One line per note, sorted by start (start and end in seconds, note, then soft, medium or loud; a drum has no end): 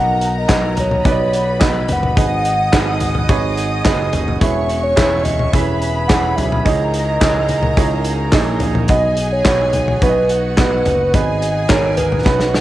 0.00 0.45 B1 loud
0.00 0.36 B3 medium
0.00 0.36 D#4 medium
0.00 0.36 F#4 medium
0.00 1.03 A#4 medium
0.00 0.36 B4 medium
0.00 0.36 D#5 medium
0.00 0.32 F#5 loud
0.00 1.03 A#5 loud
0.21 closed hi-hat medium
0.38 0.81 D#5 loud
0.48 1.01 B1 loud
0.48 0.92 B3 medium
0.48 0.92 D#4 medium
0.48 0.92 F#4 medium
0.48 0.92 B4 medium
0.48 0.92 D#5 medium
0.48 kick loud
0.48 snare loud
0.48 clap medium
0.48 closed hi-hat medium
0.77 1.06 C#5 loud
0.77 closed hi-hat medium
0.77 floor tom medium
0.91 floor tom medium
1.05 1.85 B1 loud
1.05 1.48 B3 medium
1.05 1.48 D#4 medium
1.05 1.49 F#4 medium
1.05 2.15 B4 medium
1.05 1.49 B4 medium
1.05 1.64 C#5 loud
1.05 1.12 D5 medium
1.05 2.15 B5 medium
1.05 kick loud
1.05 closed hi-hat medium
1.12 1.52 D#5 medium
1.33 closed hi-hat medium
1.59 2.04 B3 medium
1.59 2.04 D#4 medium
1.59 2.04 F#4 medium
1.59 2.04 B4 medium
1.59 2.04 D#5 medium
1.59 1.94 D#5 loud
1.59 kick loud
1.59 snare loud
1.59 clap medium
1.59 closed hi-hat medium
1.88 2.15 F#1 loud
1.88 closed hi-hat medium
1.88 floor tom medium
1.93 3.59 F#5 loud
2.03 floor tom medium
2.17 2.69 G#1 loud
2.17 2.60 D#4 medium
2.17 2.60 F#4 medium
2.17 2.60 G#4 medium
2.17 2.60 B4 medium
2.17 2.60 D#5 medium
2.17 4.37 D#5 medium
2.17 4.37 D#6 medium
2.17 kick loud
2.17 closed hi-hat loud
2.45 closed hi-hat medium
2.72 3.25 G#1 loud
2.72 3.16 D#4 loud
2.72 3.16 F#4 medium
2.72 3.16 G#4 medium
2.72 3.16 B4 medium
2.72 3.16 F#5 loud
2.72 kick loud
2.72 snare loud
2.72 clap medium
2.72 closed hi-hat medium
3.00 closed hi-hat medium
3.00 floor tom medium
3.15 floor tom medium
3.29 3.81 G#1 loud
3.29 3.72 D#4 loud
3.29 3.72 F#4 medium
3.29 3.72 G#4 medium
3.29 3.73 B4 medium
3.29 3.73 C#5 loud
3.29 kick loud
3.29 closed hi-hat medium
3.57 closed hi-hat medium
3.85 4.11 F#1 loud
3.85 4.28 D#4 medium
3.85 4.28 F#4 medium
3.85 4.28 G#4 medium
3.85 4.28 B4 medium
3.85 4.28 D#5 medium
3.85 kick loud
3.85 snare loud
3.85 clap medium
3.85 closed hi-hat medium
4.13 4.39 F#1 loud
4.13 closed hi-hat medium
4.13 floor tom medium
4.28 floor tom medium
4.41 4.93 E1 loud
4.41 5.21 B2 medium
4.41 4.84 C#4 medium
4.41 4.84 E4 medium
4.41 4.84 G#4 medium
4.41 4.84 B4 medium
4.41 4.85 C#5 medium
4.41 5.51 C#5 medium
4.41 4.85 E5 loud
4.41 5.51 C#6 medium
4.41 kick loud
4.41 closed hi-hat loud
4.70 closed hi-hat medium
4.83 5.25 C#5 loud
4.96 5.49 E1 loud
4.96 5.40 C#4 medium
4.96 5.40 E4 medium
4.96 5.40 G#4 medium
4.96 5.40 B4 medium
4.96 5.40 E5 medium
4.96 kick loud
4.96 snare loud
4.96 clap medium
4.96 closed hi-hat medium
5.24 5.54 D#5 medium
5.24 closed hi-hat medium
5.24 floor tom medium
5.39 floor tom medium
5.52 6.34 E1 loud
5.52 5.97 C#4 medium
5.52 5.97 E4 medium
5.52 5.97 G#4 medium
5.52 5.97 B4 medium
5.52 6.63 B4 medium
5.52 6.09 E5 loud
5.52 5.97 E5 medium
5.52 6.63 B5 loud
5.52 kick loud
5.52 closed hi-hat medium
5.82 closed hi-hat medium
6.08 6.53 C#4 medium
6.08 6.53 E4 medium
6.08 6.53 G#4 medium
6.08 6.53 B4 medium
6.08 6.53 C#5 medium
6.08 6.38 F#5 loud
6.08 kick loud
6.08 snare loud
6.08 clap medium
6.08 closed hi-hat medium
6.36 6.63 B1 loud
6.36 6.64 E5 loud
6.36 closed hi-hat medium
6.36 floor tom medium
6.52 floor tom medium
6.65 7.17 C#2 loud
6.65 7.45 G#2 medium
6.65 7.09 D#4 medium
6.65 7.09 E4 medium
6.65 7.09 G#4 medium
6.65 8.85 A#4 medium
6.65 7.09 C#5 medium
6.65 8.57 D#5 loud
6.65 7.09 D#5 medium
6.65 8.85 A#5 loud
6.65 kick loud
6.65 closed hi-hat medium
6.94 closed hi-hat medium
7.20 7.74 C#2 loud
7.20 7.64 D#4 medium
7.20 7.64 E4 medium
7.20 7.65 G#4 medium
7.20 7.64 C#5 medium
7.20 7.65 D#5 loud
7.20 kick loud
7.20 snare loud
7.20 clap loud
7.20 closed hi-hat medium
7.49 closed hi-hat medium
7.49 floor tom medium
7.63 floor tom medium
7.77 8.30 C#2 loud
7.77 8.21 D#4 medium
7.77 8.21 E4 medium
7.77 8.21 G#4 medium
7.77 8.21 C#5 medium
7.77 8.21 D#5 loud
7.77 kick loud
7.77 closed hi-hat medium
8.05 closed hi-hat medium
8.32 8.59 A#1 loud
8.32 8.77 D#4 loud
8.32 8.77 E4 medium
8.32 8.77 G#4 loud
8.32 8.77 C#5 medium
8.32 8.77 D#5 loud
8.32 kick loud
8.32 snare loud
8.32 clap medium
8.32 closed hi-hat medium
8.60 8.88 A#1 loud
8.60 closed hi-hat medium
8.60 floor tom medium
8.75 floor tom medium
8.88 9.41 B1 loud
8.88 9.33 B3 medium
8.88 9.33 D#4 medium
8.88 9.33 F#4 medium
8.88 10.26 G#4 loud
8.88 9.33 B4 medium
8.88 9.34 D#5 loud
8.88 9.33 D#5 medium
8.88 10.26 G#5 medium
8.88 kick loud
8.88 closed hi-hat medium
9.17 closed hi-hat medium
9.32 10.02 C#5 loud
9.45 9.98 B1 medium
9.45 9.89 B3 medium
9.45 9.89 D#4 medium
9.45 9.89 F#4 medium
9.45 9.89 B4 medium
9.45 9.89 C#5 medium
9.45 kick loud
9.45 snare loud
9.45 clap medium
9.45 closed hi-hat loud
9.73 closed hi-hat medium
9.73 floor tom medium
9.88 floor tom medium
10.02 10.82 B1 loud
10.02 10.45 B3 medium
10.02 10.45 D#4 medium
10.02 10.45 F#4 medium
10.02 10.45 B4 medium
10.02 10.54 B4 medium
10.02 10.08 C#5 medium
10.02 kick loud
10.02 closed hi-hat medium
10.09 10.49 D#5 loud
10.29 11.12 F#4 medium
10.29 11.12 F#5 medium
10.29 closed hi-hat medium
10.57 11.01 B3 medium
10.57 11.01 D#4 medium
10.57 11.01 F#4 medium
10.57 11.01 B4 medium
10.57 11.16 B4 medium
10.57 11.01 D#5 medium
10.57 kick loud
10.57 snare loud
10.57 clap medium
10.57 closed hi-hat medium
10.85 11.12 F#1 loud
10.85 closed hi-hat medium
10.85 floor tom medium
11.14 11.66 G#1 loud
11.14 11.57 B3 medium
11.14 11.58 D#4 medium
11.14 11.57 F#4 medium
11.14 12.24 G#4 medium
11.14 11.58 G#4 medium
11.14 11.58 B4 medium
11.14 11.71 D#5 loud
11.14 12.24 G#5 medium
11.14 kick loud
11.14 closed hi-hat medium
11.42 closed hi-hat medium
11.69 12.22 G#1 loud
11.69 12.13 B3 medium
11.69 12.13 D#4 medium
11.69 12.13 F#4 medium
11.69 12.13 G#4 medium
11.69 12.13 A#4 loud
11.69 11.98 C#5 loud
11.69 kick loud
11.69 snare loud
11.69 clap loud
11.69 closed hi-hat medium
11.97 12.61 B4 medium
11.97 closed hi-hat medium
11.97 floor tom medium
12.12 floor tom medium
12.25 12.61 B1 loud
12.25 12.61 B3 medium
12.25 12.61 C#4 medium
12.25 12.61 D#4 medium
12.25 12.61 F#4 medium
12.25 12.61 B4 medium
12.25 12.61 F#5 medium
12.25 kick loud
12.25 snare medium
12.40 snare medium
12.54 snare medium